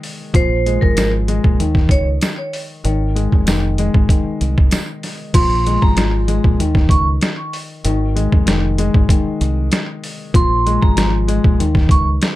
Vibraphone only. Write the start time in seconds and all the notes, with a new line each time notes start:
0.36 C5
0.81 A#4
1.91 C#5
5.35 C6
5.82 A#5
6.90 C#6
10.36 C6
10.82 A#5
11.91 C#6